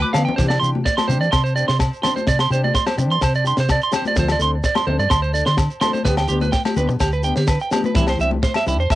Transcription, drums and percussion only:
0.04 high conga
0.14 snare, low conga, low agogo, shekere
0.28 low conga
0.38 kick, snare, shekere
0.50 snare, low agogo, shekere
0.63 shekere
0.75 high conga
0.86 kick, snare, shekere
0.98 snare, high conga, low agogo, shekere
1.10 low conga, shekere
1.22 shekere
1.32 kick, snare, low agogo, shekere
1.46 shekere
1.57 shekere
1.68 snare, shekere
1.79 kick, snare, low agogo, shekere
1.93 shekere
2.03 snare, high conga, low conga, low agogo, shekere
2.17 high conga, shekere
2.27 kick, snare, shekere
2.39 snare, low agogo, shekere
2.52 shekere
2.64 high conga
2.74 kick, snare, shekere
2.87 snare, high conga, low agogo, shekere
2.99 low conga, shekere
3.11 shekere
3.21 kick, snare, low agogo, shekere
3.35 shekere
3.46 shekere
3.57 snare, shekere
3.69 kick, snare, low agogo, shekere
3.81 shekere
3.92 snare, high conga, low conga, low agogo, shekere
4.05 high conga, shekere
4.16 kick, snare, shekere
4.28 snare, low agogo, shekere
4.40 snare, shekere
4.64 kick, snare, shekere
4.75 snare, high conga, low agogo, shekere
4.88 low conga
4.99 shekere
5.10 kick, snare, low agogo, shekere
5.23 shekere
5.35 shekere
5.46 snare
5.57 kick, snare, low agogo, shekere
5.70 shekere
5.81 snare, high conga, low conga, low agogo, shekere
5.94 high conga, shekere
6.05 kick, snare, shekere
6.17 snare, low agogo, shekere
6.28 shekere
6.41 high conga, shekere
6.53 kick, snare, shekere
6.65 snare, high conga, low agogo, shekere
6.76 high conga, low conga, shekere
6.89 low conga, shekere
7.00 kick, snare, low agogo, shekere
7.12 shekere
7.23 shekere
7.36 snare, shekere
7.47 kick, snare, low agogo, shekere
7.60 shekere
7.71 snare, high conga, low conga, low agogo, shekere
7.84 high conga, shekere
7.95 kick, snare, shekere
8.07 snare, low agogo, shekere
8.20 shekere
8.31 high conga
8.43 kick, snare, shekere
8.54 snare, high conga, low agogo, shekere
8.67 low conga, shekere
8.80 shekere
8.90 kick, snare, low agogo, shekere

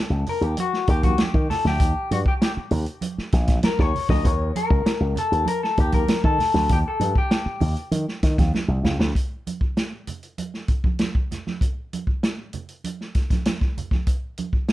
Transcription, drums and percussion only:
0.26 open hi-hat, muted conga, low conga
0.42 closed hi-hat
0.57 closed hi-hat, muted conga, high conga
0.73 snare
0.87 kick, closed hi-hat
1.03 kick, closed hi-hat, high conga
1.18 snare, closed hi-hat, muted conga, high conga
1.34 kick
1.50 snare, open hi-hat, muted conga, low conga
1.65 snare, high conga
1.80 kick, closed hi-hat
2.11 closed hi-hat, muted conga, high conga
2.26 kick
2.42 snare, closed hi-hat, muted conga
2.71 open hi-hat, muted conga, low conga
2.86 closed hi-hat
3.01 closed hi-hat, high conga
3.18 snare
3.32 kick, snare, closed hi-hat
3.47 kick, snare, closed hi-hat, high conga
3.63 snare, closed hi-hat, high conga
3.79 kick, snare
3.94 open hi-hat, low conga
4.09 kick, snare, high conga
4.25 kick, closed hi-hat
4.55 closed hi-hat, high conga
4.70 kick
4.86 snare, closed hi-hat, muted conga
5.16 closed hi-hat, low conga
5.33 closed hi-hat
5.45 closed hi-hat, muted conga, high conga
5.64 snare
5.77 kick, closed hi-hat, muted conga
5.92 kick, closed hi-hat, high conga
6.08 snare, closed hi-hat, muted conga, high conga
6.24 kick
6.39 snare, open hi-hat, muted conga, low conga
6.54 snare, high conga
6.69 kick, closed hi-hat, muted conga, low conga
7.00 closed hi-hat, muted conga, high conga
7.15 kick
7.31 snare, closed hi-hat, muted conga
7.60 open hi-hat, low conga
7.77 closed hi-hat
7.92 closed hi-hat, high conga
8.08 snare
8.23 kick, snare, closed hi-hat, muted conga
8.38 kick, snare, closed hi-hat, high conga
8.54 snare, high conga
8.85 snare, high conga, low conga
9.00 snare, high conga
9.15 kick, closed hi-hat, muted conga
9.47 closed hi-hat, muted conga, high conga
9.61 kick
9.77 snare, closed hi-hat, muted conga
10.07 closed hi-hat, muted conga, low conga
10.23 closed hi-hat
10.38 closed hi-hat, muted conga, high conga
10.54 snare
10.68 kick, closed hi-hat, muted conga
10.84 kick, high conga
10.99 snare, closed hi-hat, muted conga, high conga
11.15 kick
11.31 snare, closed hi-hat, muted conga, low conga
11.47 snare, high conga
11.61 kick, closed hi-hat, muted conga
11.93 closed hi-hat, high conga
12.07 kick
12.23 snare, closed hi-hat
12.53 closed hi-hat, muted conga, low conga
12.69 closed hi-hat
12.84 closed hi-hat, high conga
13.01 snare
13.15 kick, snare, closed hi-hat
13.30 kick, snare, closed hi-hat, high conga
13.45 snare, closed hi-hat, muted conga, high conga
13.61 kick, snare
13.77 closed hi-hat, muted conga, low conga
13.91 kick, snare, high conga
14.07 kick, closed hi-hat, muted conga
14.38 closed hi-hat, muted conga, high conga
14.53 kick
14.69 snare, closed hi-hat, muted conga

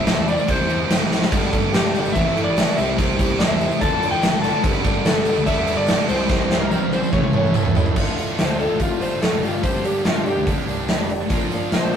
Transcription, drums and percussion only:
0.07 snare, tambourine, crash
0.17 tambourine
0.28 tambourine, crash
0.38 tambourine
0.48 kick, tambourine, crash
0.60 tambourine
0.69 tambourine, crash
0.81 tambourine
0.90 snare, tambourine, crash
1.11 snare, tambourine
1.22 snare
1.32 kick, crash
1.53 kick, crash
1.74 snare, tambourine, crash
1.95 tambourine, crash
2.05 tambourine
2.16 kick, crash
2.37 tambourine, crash
2.57 snare, tambourine, crash
2.78 tambourine, crash
2.98 kick, crash
3.19 kick, tambourine, crash
3.40 snare, tambourine, crash
3.61 tambourine, crash
3.71 tambourine
3.81 kick, crash
4.02 tambourine, crash
4.22 snare, tambourine, crash
4.43 snare, tambourine, crash
4.64 kick, crash
4.84 kick, tambourine, crash
5.05 snare, tambourine, crash
5.25 tambourine, crash
5.36 tambourine
5.47 kick, crash
5.67 tambourine, crash
5.87 snare, tambourine, crash
6.09 tambourine, crash
6.30 kick, snare, tambourine
6.40 tambourine
6.50 snare, tambourine
6.62 tambourine
6.71 high tom, tambourine
6.82 tambourine
6.92 high tom, tambourine
7.03 tambourine
7.12 kick, mid tom
7.23 mid tom
7.33 mid tom
7.44 mid tom, tambourine
7.54 mid tom, tambourine
7.65 floor tom
7.75 floor tom, tambourine
7.86 floor tom
7.96 kick, crash
8.18 open hi-hat
8.38 snare, open hi-hat
8.60 open hi-hat
8.80 kick, open hi-hat
9.01 open hi-hat
9.22 snare, open hi-hat
9.43 open hi-hat
9.63 kick, open hi-hat
9.84 open hi-hat
10.05 snare, open hi-hat
10.26 open hi-hat
10.47 kick, open hi-hat
10.68 open hi-hat
10.89 snare, open hi-hat
11.10 open hi-hat
11.30 kick, open hi-hat
11.51 open hi-hat
11.72 snare, open hi-hat
11.93 open hi-hat

